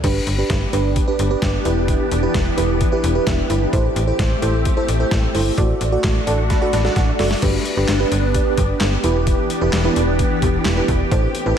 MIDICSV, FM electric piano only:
0, 0, Header, 1, 2, 480
1, 0, Start_track
1, 0, Key_signature, 1, "major"
1, 0, Tempo, 461538
1, 40, Time_signature, 4, 2, 24, 8
1, 12045, End_track
2, 0, Start_track
2, 0, Title_t, "FM electric piano"
2, 0, Program_c, 0, 5
2, 39, Note_on_c, 0, 67, 75
2, 39, Note_on_c, 0, 71, 87
2, 40, Note_on_c, 0, 62, 76
2, 344, Note_off_c, 0, 62, 0
2, 344, Note_off_c, 0, 67, 0
2, 344, Note_off_c, 0, 71, 0
2, 399, Note_on_c, 0, 62, 82
2, 400, Note_on_c, 0, 67, 75
2, 400, Note_on_c, 0, 71, 89
2, 704, Note_off_c, 0, 62, 0
2, 704, Note_off_c, 0, 67, 0
2, 704, Note_off_c, 0, 71, 0
2, 758, Note_on_c, 0, 62, 86
2, 759, Note_on_c, 0, 67, 79
2, 760, Note_on_c, 0, 71, 95
2, 1063, Note_off_c, 0, 62, 0
2, 1064, Note_off_c, 0, 67, 0
2, 1064, Note_off_c, 0, 71, 0
2, 1118, Note_on_c, 0, 71, 91
2, 1119, Note_on_c, 0, 62, 87
2, 1119, Note_on_c, 0, 67, 77
2, 1322, Note_off_c, 0, 62, 0
2, 1322, Note_off_c, 0, 67, 0
2, 1322, Note_off_c, 0, 71, 0
2, 1359, Note_on_c, 0, 62, 85
2, 1359, Note_on_c, 0, 67, 77
2, 1359, Note_on_c, 0, 71, 92
2, 1664, Note_off_c, 0, 62, 0
2, 1664, Note_off_c, 0, 67, 0
2, 1664, Note_off_c, 0, 71, 0
2, 1719, Note_on_c, 0, 64, 88
2, 1719, Note_on_c, 0, 71, 95
2, 1720, Note_on_c, 0, 67, 81
2, 2227, Note_off_c, 0, 64, 0
2, 2227, Note_off_c, 0, 67, 0
2, 2227, Note_off_c, 0, 71, 0
2, 2317, Note_on_c, 0, 64, 86
2, 2317, Note_on_c, 0, 67, 76
2, 2317, Note_on_c, 0, 71, 91
2, 2623, Note_off_c, 0, 64, 0
2, 2623, Note_off_c, 0, 67, 0
2, 2623, Note_off_c, 0, 71, 0
2, 2677, Note_on_c, 0, 64, 84
2, 2677, Note_on_c, 0, 67, 77
2, 2677, Note_on_c, 0, 71, 93
2, 2983, Note_off_c, 0, 64, 0
2, 2983, Note_off_c, 0, 67, 0
2, 2983, Note_off_c, 0, 71, 0
2, 3037, Note_on_c, 0, 67, 75
2, 3037, Note_on_c, 0, 71, 92
2, 3038, Note_on_c, 0, 64, 88
2, 3241, Note_off_c, 0, 67, 0
2, 3241, Note_off_c, 0, 71, 0
2, 3242, Note_off_c, 0, 64, 0
2, 3277, Note_on_c, 0, 71, 90
2, 3278, Note_on_c, 0, 64, 84
2, 3278, Note_on_c, 0, 67, 78
2, 3397, Note_on_c, 0, 76, 73
2, 3583, Note_off_c, 0, 64, 0
2, 3583, Note_off_c, 0, 67, 0
2, 3583, Note_off_c, 0, 71, 0
2, 3621, Note_off_c, 0, 76, 0
2, 3636, Note_on_c, 0, 71, 96
2, 3637, Note_on_c, 0, 64, 88
2, 3637, Note_on_c, 0, 67, 80
2, 3637, Note_on_c, 0, 83, 74
2, 3841, Note_off_c, 0, 64, 0
2, 3841, Note_off_c, 0, 67, 0
2, 3841, Note_off_c, 0, 71, 0
2, 3861, Note_off_c, 0, 83, 0
2, 3878, Note_on_c, 0, 64, 80
2, 3878, Note_on_c, 0, 69, 77
2, 3878, Note_on_c, 0, 72, 93
2, 4183, Note_off_c, 0, 64, 0
2, 4183, Note_off_c, 0, 69, 0
2, 4183, Note_off_c, 0, 72, 0
2, 4237, Note_on_c, 0, 64, 83
2, 4237, Note_on_c, 0, 69, 74
2, 4237, Note_on_c, 0, 72, 92
2, 4543, Note_off_c, 0, 64, 0
2, 4543, Note_off_c, 0, 69, 0
2, 4543, Note_off_c, 0, 72, 0
2, 4597, Note_on_c, 0, 72, 98
2, 4598, Note_on_c, 0, 64, 84
2, 4598, Note_on_c, 0, 69, 80
2, 4903, Note_off_c, 0, 64, 0
2, 4903, Note_off_c, 0, 69, 0
2, 4903, Note_off_c, 0, 72, 0
2, 4959, Note_on_c, 0, 64, 85
2, 4959, Note_on_c, 0, 69, 82
2, 4959, Note_on_c, 0, 72, 96
2, 5162, Note_off_c, 0, 64, 0
2, 5162, Note_off_c, 0, 69, 0
2, 5162, Note_off_c, 0, 72, 0
2, 5198, Note_on_c, 0, 72, 91
2, 5199, Note_on_c, 0, 64, 83
2, 5199, Note_on_c, 0, 69, 78
2, 5503, Note_off_c, 0, 64, 0
2, 5503, Note_off_c, 0, 69, 0
2, 5503, Note_off_c, 0, 72, 0
2, 5560, Note_on_c, 0, 69, 80
2, 5560, Note_on_c, 0, 72, 95
2, 5561, Note_on_c, 0, 64, 86
2, 5763, Note_off_c, 0, 64, 0
2, 5763, Note_off_c, 0, 69, 0
2, 5763, Note_off_c, 0, 72, 0
2, 5799, Note_on_c, 0, 66, 80
2, 5799, Note_on_c, 0, 74, 92
2, 5800, Note_on_c, 0, 69, 73
2, 6104, Note_off_c, 0, 66, 0
2, 6104, Note_off_c, 0, 69, 0
2, 6104, Note_off_c, 0, 74, 0
2, 6159, Note_on_c, 0, 66, 84
2, 6160, Note_on_c, 0, 69, 77
2, 6160, Note_on_c, 0, 74, 94
2, 6464, Note_off_c, 0, 66, 0
2, 6464, Note_off_c, 0, 69, 0
2, 6464, Note_off_c, 0, 74, 0
2, 6518, Note_on_c, 0, 74, 93
2, 6519, Note_on_c, 0, 66, 83
2, 6519, Note_on_c, 0, 69, 79
2, 6519, Note_on_c, 0, 81, 73
2, 6742, Note_off_c, 0, 81, 0
2, 6760, Note_on_c, 0, 83, 74
2, 6823, Note_off_c, 0, 74, 0
2, 6824, Note_off_c, 0, 66, 0
2, 6824, Note_off_c, 0, 69, 0
2, 6880, Note_on_c, 0, 69, 78
2, 6881, Note_on_c, 0, 66, 83
2, 6881, Note_on_c, 0, 74, 96
2, 6983, Note_off_c, 0, 83, 0
2, 7000, Note_on_c, 0, 81, 75
2, 7083, Note_off_c, 0, 66, 0
2, 7083, Note_off_c, 0, 69, 0
2, 7083, Note_off_c, 0, 74, 0
2, 7119, Note_on_c, 0, 66, 82
2, 7119, Note_on_c, 0, 74, 97
2, 7120, Note_on_c, 0, 69, 75
2, 7223, Note_off_c, 0, 81, 0
2, 7239, Note_on_c, 0, 78, 75
2, 7424, Note_off_c, 0, 66, 0
2, 7424, Note_off_c, 0, 69, 0
2, 7424, Note_off_c, 0, 74, 0
2, 7462, Note_off_c, 0, 78, 0
2, 7479, Note_on_c, 0, 66, 87
2, 7479, Note_on_c, 0, 74, 98
2, 7479, Note_on_c, 0, 76, 72
2, 7480, Note_on_c, 0, 69, 78
2, 7682, Note_off_c, 0, 66, 0
2, 7682, Note_off_c, 0, 69, 0
2, 7682, Note_off_c, 0, 74, 0
2, 7702, Note_off_c, 0, 76, 0
2, 7719, Note_on_c, 0, 67, 73
2, 7720, Note_on_c, 0, 62, 82
2, 7720, Note_on_c, 0, 71, 90
2, 8024, Note_off_c, 0, 62, 0
2, 8024, Note_off_c, 0, 67, 0
2, 8024, Note_off_c, 0, 71, 0
2, 8078, Note_on_c, 0, 71, 95
2, 8079, Note_on_c, 0, 62, 86
2, 8079, Note_on_c, 0, 67, 76
2, 8282, Note_off_c, 0, 62, 0
2, 8282, Note_off_c, 0, 67, 0
2, 8282, Note_off_c, 0, 71, 0
2, 8318, Note_on_c, 0, 67, 81
2, 8319, Note_on_c, 0, 62, 89
2, 8319, Note_on_c, 0, 71, 96
2, 9131, Note_off_c, 0, 62, 0
2, 9131, Note_off_c, 0, 67, 0
2, 9131, Note_off_c, 0, 71, 0
2, 9399, Note_on_c, 0, 64, 91
2, 9399, Note_on_c, 0, 67, 84
2, 9399, Note_on_c, 0, 71, 102
2, 9907, Note_off_c, 0, 64, 0
2, 9907, Note_off_c, 0, 67, 0
2, 9907, Note_off_c, 0, 71, 0
2, 9998, Note_on_c, 0, 64, 87
2, 9998, Note_on_c, 0, 67, 77
2, 9998, Note_on_c, 0, 71, 97
2, 10202, Note_off_c, 0, 64, 0
2, 10202, Note_off_c, 0, 67, 0
2, 10202, Note_off_c, 0, 71, 0
2, 10240, Note_on_c, 0, 64, 90
2, 10240, Note_on_c, 0, 67, 82
2, 10240, Note_on_c, 0, 71, 99
2, 11052, Note_off_c, 0, 64, 0
2, 11052, Note_off_c, 0, 67, 0
2, 11052, Note_off_c, 0, 71, 0
2, 11200, Note_on_c, 0, 64, 87
2, 11200, Note_on_c, 0, 67, 79
2, 11200, Note_on_c, 0, 71, 93
2, 11504, Note_off_c, 0, 64, 0
2, 11504, Note_off_c, 0, 67, 0
2, 11504, Note_off_c, 0, 71, 0
2, 11560, Note_on_c, 0, 64, 84
2, 11560, Note_on_c, 0, 69, 75
2, 11560, Note_on_c, 0, 72, 95
2, 11864, Note_off_c, 0, 64, 0
2, 11864, Note_off_c, 0, 69, 0
2, 11864, Note_off_c, 0, 72, 0
2, 11918, Note_on_c, 0, 64, 85
2, 11918, Note_on_c, 0, 69, 78
2, 11918, Note_on_c, 0, 71, 97
2, 12045, Note_off_c, 0, 64, 0
2, 12045, Note_off_c, 0, 69, 0
2, 12045, Note_off_c, 0, 71, 0
2, 12045, End_track
0, 0, End_of_file